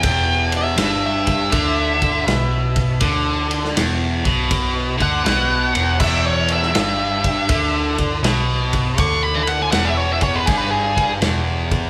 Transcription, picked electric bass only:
0.04 0.75 E1 loud
0.78 1.49 G1 medium
1.53 2.24 D2 loud
2.27 2.98 B1 loud
3.01 3.72 D2 medium
3.77 4.23 E1 medium
4.26 4.97 B1 medium
5.00 5.24 D2 loud
5.27 5.72 B1 medium
5.77 6.00 E1 loud
6.01 6.71 E1 loud
6.76 7.46 G1 medium
7.50 8.20 D2 loud
8.23 8.94 B1 loud
8.99 9.69 D2 loud
9.73 10.44 E1 medium
10.48 11.18 G1 loud
11.22 11.90 E1 loud

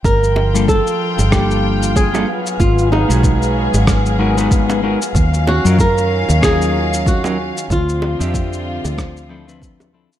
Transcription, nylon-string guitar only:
0.05 0.68 A#4 loud
0.69 1.32 A4 medium
1.33 1.92 G4 medium
1.96 2.62 G#4 medium
2.60 2.92 F4 medium
2.92 3.84 D#4 medium
5.48 5.80 F#4 medium
5.80 6.44 A#4 loud
6.44 7.08 G#4 medium
7.08 7.72 F#4 medium
7.72 8.95 F4 medium

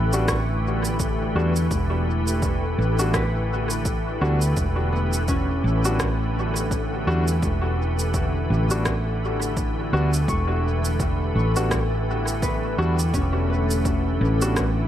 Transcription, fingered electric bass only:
0.00 1.33 A1 loud
1.35 1.68 E2 medium
1.71 2.75 E1 medium
2.79 4.18 A1 medium
4.21 4.53 D2 medium
4.57 5.61 E1 medium
5.64 7.04 A1 loud
7.07 7.39 E2 medium
7.43 8.47 E1 medium
8.50 9.90 A1 medium
9.93 10.25 D2 medium
10.28 11.33 E1 medium
11.36 12.76 A1 medium
12.79 13.11 E2 medium
13.14 14.18 E1 medium
14.21 14.88 A1 loud

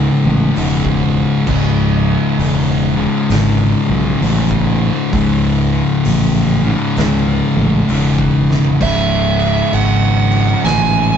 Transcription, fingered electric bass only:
0.24 0.48 A1 medium
0.57 1.24 E1 medium
1.47 2.15 C#1 loud
2.38 3.06 E1 medium
3.29 3.73 G#1 medium
3.89 4.13 B1 medium
4.21 4.89 A1 medium
5.13 5.81 C#2 loud
6.06 6.73 A1 medium
6.97 7.40 C#2 medium
7.57 7.81 A1 medium
7.89 8.57 E1 loud
8.81 9.61 C#1 medium
9.72 10.53 G#1 medium
10.64 11.17 A1 medium

